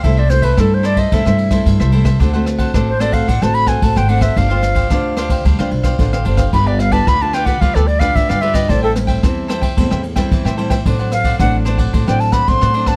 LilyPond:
<<
  \new Staff \with { instrumentName = "Flute" } { \time 4/4 \key g \mixolydian \tempo 4 = 111 e''16 d''16 c''16 b'16 a'16 c''16 d''16 ees''16 e''4 r4 | r4 r16 c''16 d''16 f''16 fis''16 a''16 b''16 aes''16 a''16 g''16 fis''16 e''16 | f''4. r2 r8 | b''16 d''16 f''16 a''16 b''16 a''16 g''16 fis''16 f''16 a'16 d''16 f''16 e''16 f''16 e''16 ees''16 |
d''16 a'16 r2. r8 | r8 f''8 fis''8 r8. g''16 a''16 b''16 c'''8. a''16 | }
  \new Staff \with { instrumentName = "Cavaquinho" } { \time 4/4 \key g \mixolydian <e' a' c'' e''>16 <a' c'' e''>16 r16 <a' c'' e''>16 <e' a' c'' e''>8 <e' a' c'' e''>16 <a' c'' e''>16 <e' a' c'' e''>16 <a' c'' e''>16 r16 <a' c'' e''>8 <a' c'' e''>16 <e' a' c'' e''>16 <a' c'' e''>16 | <d' a' c'' fis''>16 <a' c'' fis''>16 r16 <a' c'' fis''>16 <d' a' c'' fis''>8 <d' a' c'' fis''>16 <a' c'' fis''>16 <d' a' c'' fis''>16 <a' c'' fis''>16 r16 <a' c'' fis''>8 <a' c'' fis''>16 <d' a' c'' fis''>16 <a' c'' fis''>16 | <d' g' c'' f''>16 <g' c'' f''>16 r16 <g' c'' f''>16 <d' g' c'' f''>8 <d' g' c'' f''>16 <g' c'' f''>16 <d' g' c'' f''>16 <g' c'' f''>16 r16 <g' c'' f''>8 <g' c'' f''>16 <d' g' c'' f''>16 <g' c'' f''>16 | <f' g' b' d''>16 <g' b' d''>16 r16 <g' b' d''>16 <f' g' b' d''>8 <f' g' b' d''>16 <g' b' d''>16 <f' g' b' d''>16 <g' b' d''>16 r16 <g' b' d''>8 <g' b' d''>16 <f' g' b' d''>16 <g' b' d''>16 |
<a' c'' e'' g''>16 <c'' e'' g''>16 r16 <c'' e'' g''>16 <a' c'' e'' g''>8 <a' c'' e'' g''>16 <c'' e'' g''>16 <a' c'' e'' g''>16 <c'' e'' g''>16 r16 <c'' e'' g''>8 <c'' e'' g''>16 <a' c'' e'' g''>16 <c'' e'' g''>16 | <d' c'' d'' fis''>16 <c'' d'' fis''>16 r16 <c'' d'' fis''>16 <d' c'' d'' fis''>8 <d' c'' d'' fis''>16 <c'' d'' fis''>16 <d' c'' d'' fis''>16 <c'' d'' fis''>16 r16 <c'' d'' fis''>8 <c'' d'' fis''>16 <d' c'' d'' fis''>16 <c'' d'' fis''>16 | }
  \new Staff \with { instrumentName = "Nylon-string guitar" } { \time 4/4 \key g \mixolydian << { <g a e'>16 r16 <g a e'>16 r16 <g a e'>8. r16 <g a e'>16 <g a e'>8 <g a e'>8. <g a e'>16 r16 | <a c' fis'>16 <a c' fis'>8. <a c' fis'>16 r16 <a c' fis'>8 r16 <a c' fis'>8. <a c' fis'>8 <a c' fis'>8 | <d' f' c''>16 <d' f' c''>8. <d' f' c''>8 <d' f' c''>8 r16 <d' f' c''>8. <d' f' c''>16 r16 <d' f' c''>16 r16 | <d' f' b'>8. <d' f' b'>8 <d' f' b'>8 <d' f' b'>16 <d' f' b'>8 r16 <d' f' b'>8. <d' f' b'>8 |
<g c' e'>8 <g c' e'>8 <g c' e'>8 <g c' e'>16 r16 <g c' e'>8 r16 <g c' e'>8. <g c' e'>16 r16 | <fis c' d'>16 <fis c' d'>8. <fis c' d'>8 <fis c' d'>8. <fis c' d'>8. <fis c' d'>8 <fis c' d'>8 | } \\ { c4 g,4 c4 g,4 | d4 a,4 d4 r4 | g4 d4 g4 d4 | g4 d4 g4 d4 |
a,4 e4 a,4 e4 | a,4 a,4 a,4 a,4 | } >> }
  \new Staff \with { instrumentName = "Upright bass" } { \clef bass \time 4/4 \key g \mixolydian c,4 g,4 g,16 g,8. g,16 c,8. | d,4 a,,4 a,,16 a,,8. a,,16 aes,,8. | g,,4 d,4 d,16 d,16 b,,8 a,,8 g,,8 | g,,4 d,4 d,16 d,8. d,16 g,8. |
a,,4 e,4 e,16 e,8. e,16 a,8. | a,,4 a,,4 a,,16 a,,8. a,,16 a,8. | }
  \new DrumStaff \with { instrumentName = "Drums" } \drummode { \time 4/4 <bd cymr>8 <cymr ss>16 <bd cymr>16 <bd cymr ss>8 <cymr ss>16 <bd cymr>16 <bd cymr>16 ss16 cymr16 <bd cymr ss>16 <bd cymr>16 ss16 cymr16 <bd cymr ss>16 | <bd cymr>8 <cymr ss>16 <bd cymr>16 <bd cymr ss>8 <cymr ss>16 <bd cymr>16 <bd cymr>16 ss16 cymr16 <bd cymr ss>16 <bd cymr>16 ss16 cymr16 <bd cymr ss>16 | <bd cymr>8 <cymr ss>16 <bd cymr>16 <bd cymr ss>8 <cymr ss>16 <bd cymr>16 <bd cymr>16 ss16 cymr16 <bd cymr ss>16 <bd cymr>16 ss16 cymr16 <bd cymr ss>16 | <bd cymr>8 <cymr ss>16 <bd cymr>16 <bd cymr ss>8 <cymr ss>16 <bd cymr>16 <bd cymr>16 ss16 cymr16 <bd cymr ss>16 <bd cymr>16 ss16 cymr16 <bd cymr ss>16 |
<bd cymr>8 <cymr ss>16 <bd cymr>16 <bd cymr ss>8 <cymr ss>16 <bd cymr>16 <bd cymr>16 ss16 cymr16 <bd cymr ss>16 <bd cymr>16 ss16 cymr16 <bd cymr ss>16 | <bd cymr>8 <cymr ss>16 <bd cymr>16 <bd cymr ss>8 <cymr ss>16 <bd cymr>16 <bd cymr>16 ss16 cymr16 <bd cymr ss>16 <bd cymr>16 ss16 cymr16 <bd cymr ss>16 | }
>>